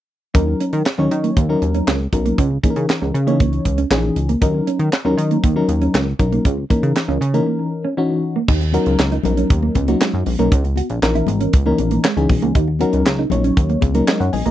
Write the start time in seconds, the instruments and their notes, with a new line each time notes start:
0.34 analog synth bass D#2, fm electric piano F#3 C#4 D#4 A#4, clean electric guitar D#4, kick, closed hi-hat
0.48 muted clean electric guitar stroke
0.60 clean electric guitar C#4, closed hi-hat
0.73 analog synth bass D#3, closed hi-hat
0.86 snare, clap
0.98 analog synth bass D#2, fm electric piano F#3 C#4 D#4 C#5, clean electric guitar C#4
1.11 analog synth bass D#3, muted clean electric guitar stroke, closed hi-hat
1.24 clean electric guitar A#3, closed hi-hat
1.37 analog synth bass D#2, clean electric guitar A#3, kick, closed hi-hat
1.49 fm electric piano F#3 C#4 D#4 A#4, muted clean electric guitar stroke
1.62 analog synth bass D#2, closed hi-hat
1.75 clean electric guitar C#4, closed hi-hat
1.87 analog synth bass C#2, clean electric guitar C#4, snare, clap
2.00 muted clean electric guitar stroke
2.13 analog synth bass B1, fm electric piano F#3 C#4 D#4 A#4, kick, closed hi-hat
2.26 clean electric guitar A#3, closed hi-hat
2.38 analog synth bass C#2, clean electric guitar C#4, kick, closed hi-hat
2.51 muted clean electric guitar stroke
2.63 fm electric piano E3 C#4 D#4 G#4, clean electric guitar A#3, kick, closed hi-hat
2.70 fm electric piano A#4
2.76 analog synth bass C#3, closed hi-hat
2.90 snare, clap
3.02 analog synth bass C#2, clean electric guitar C#4
3.14 analog synth bass C#3, muted clean electric guitar stroke, closed hi-hat
3.27 fm electric piano E3 C#4 D#4 C#5, clean electric guitar A#3, closed hi-hat
3.40 analog synth bass C#2, clean electric guitar A#3, kick, closed hi-hat
3.53 muted clean electric guitar stroke, closed hi-hat
3.65 analog synth bass C#2, kick, closed hi-hat
3.78 clean electric guitar C#4, closed hi-hat
3.90 analog synth bass A#1, fm electric piano E3 C#4 D#4 G#4, clean electric guitar C#4, snare, clap
4.04 muted clean electric guitar stroke
4.16 analog synth bass C#2, closed hi-hat
4.29 clean electric guitar A#3, closed hi-hat
4.41 analog synth bass D#2, fm electric piano F#3 C#4 D#4 A#4, clean electric guitar D#4, kick, closed hi-hat
4.55 muted clean electric guitar stroke
4.67 clean electric guitar C#4, closed hi-hat
4.79 analog synth bass D#3, closed hi-hat
4.93 snare, clap
5.05 analog synth bass D#2, fm electric piano F#3 C#4 D#4 A#4, clean electric guitar C#4
5.17 analog synth bass D#3, muted clean electric guitar stroke, closed hi-hat
5.31 clean electric guitar A#3, closed hi-hat
5.43 analog synth bass D#2, clean electric guitar A#3, kick, closed hi-hat
5.56 fm electric piano F#3 C#4 D#4 A#4, muted clean electric guitar stroke
5.68 analog synth bass D#2, closed hi-hat
5.82 clean electric guitar C#4, closed hi-hat
5.94 analog synth bass C#2, clean electric guitar C#4, snare, clap
6.07 muted clean electric guitar stroke
6.19 analog synth bass B1, fm electric piano F#3 C#4 D#4 A#4, kick, closed hi-hat
6.33 clean electric guitar A#3, closed hi-hat
6.45 analog synth bass C#2, clean electric guitar C#4, kick, closed hi-hat
6.58 muted clean electric guitar stroke
6.70 fm electric piano E3 C#4 D#4 A#4, clean electric guitar A#3, kick, closed hi-hat
6.83 analog synth bass C#3, closed hi-hat
6.96 snare, clap
7.08 analog synth bass C#2, clean electric guitar C#4
7.21 analog synth bass C#3, muted clean electric guitar stroke, closed hi-hat
7.34 fm electric piano E3 C#4 D#4 A#4, clean electric guitar A#3, closed hi-hat
7.47 clean electric guitar A#3
7.59 muted clean electric guitar stroke
7.85 clean electric guitar C#4
7.97 fm electric piano E3 C#4 D#4 F#4, clean electric guitar C#4
8.10 muted clean electric guitar stroke
8.36 clean electric guitar A#3
8.48 analog synth bass D#2, clean electric guitar D#4, kick, crash, muted conga
8.61 muted clean electric guitar stroke, closed hi-hat, muted conga
8.72 fm electric piano F#3 C#4 D#4 A#4, clean electric guitar F#4, closed hi-hat, high conga
8.86 analog synth bass C#2, closed hi-hat
8.99 analog synth bass C#2, snare, clap
9.11 clean electric guitar D#4, closed hi-hat, muted conga
9.23 analog synth bass A#1, fm electric piano F#3 C#4 D#4 A#4, muted clean electric guitar stroke, closed hi-hat, high conga, low conga
9.37 clean electric guitar C#4, closed hi-hat
9.50 analog synth bass D#2, kick, closed hi-hat
9.63 clean electric guitar A#3, muted conga
9.75 analog synth bass C#2, muted clean electric guitar stroke, kick, closed hi-hat, high conga
9.88 fm electric piano F#3 C#4 D#4 F#4, clean electric guitar A#3, closed hi-hat
10.01 clean electric guitar G#3, snare, clap, muted conga
10.13 analog synth bass F#2, muted conga
10.26 analog synth bass A#1, muted clean electric guitar stroke, open hi-hat, high conga, low conga
10.39 analog synth bass B1, fm electric piano F#3 C#4 D#4 A#4, clean electric guitar A#3, closed hi-hat
10.52 analog synth bass C#2, clean electric guitar C#4, kick, closed hi-hat
10.64 muted clean electric guitar stroke, closed hi-hat, muted conga
10.76 clean electric guitar F#4, closed hi-hat, high conga
10.90 analog synth bass A#1, closed hi-hat
11.02 analog synth bass A#1, fm electric piano E3 C#4 D#4 A#4, snare, clap
11.15 clean electric guitar E4, closed hi-hat, muted conga
11.27 analog synth bass G#1, muted clean electric guitar stroke, closed hi-hat, high conga, low conga
11.41 clean electric guitar C#4, closed hi-hat
11.53 analog synth bass C#2, kick, closed hi-hat
11.66 fm electric piano E3 C#4 D#4 A#4, clean electric guitar A#3, muted conga
11.78 analog synth bass A#1, muted clean electric guitar stroke, closed hi-hat, high conga
11.91 clean electric guitar A#3, closed hi-hat
12.04 clean electric guitar G#3, snare, clap, muted conga
12.17 analog synth bass C#2, fm electric piano E3 C#4 D#4 G#4, closed hi-hat, muted conga
12.29 analog synth bass B1, muted clean electric guitar stroke, kick, open hi-hat, high conga, low conga
12.42 analog synth bass C#2, clean electric guitar A#3, closed hi-hat
12.55 analog synth bass D#2, clean electric guitar D#4, kick, closed hi-hat
12.68 muted clean electric guitar stroke, muted conga
12.79 fm electric piano F#3 C#4 D#4 A#4, clean electric guitar F#4, closed hi-hat, high conga
12.93 analog synth bass C#2, closed hi-hat
13.06 analog synth bass C#2, snare, clap, muted conga
13.18 clean electric guitar D#4, muted conga
13.30 analog synth bass A#1, fm electric piano F#3 C#4 D#4 C#5, muted clean electric guitar stroke, closed hi-hat, high conga, low conga
13.44 clean electric guitar C#4, closed hi-hat
13.57 analog synth bass D#2, kick, closed hi-hat, muted conga
13.69 clean electric guitar A#3, closed hi-hat, muted conga
13.81 analog synth bass C#2, kick, closed hi-hat, high conga
13.94 fm electric piano F#3 C#4 D#4 A#4, clean electric guitar A#3, closed hi-hat
14.08 clean electric guitar G#3, fm electric piano A#4 D#5, snare, clap
14.20 analog synth bass F#2, fm electric piano C#5 F#5, closed hi-hat, muted conga
14.33 analog synth bass A#1, fm electric piano D#5 G#5, muted clean electric guitar stroke, open hi-hat, high conga, low conga
14.46 analog synth bass B1, clean electric guitar A#3, fm electric piano D#5 A#5, closed hi-hat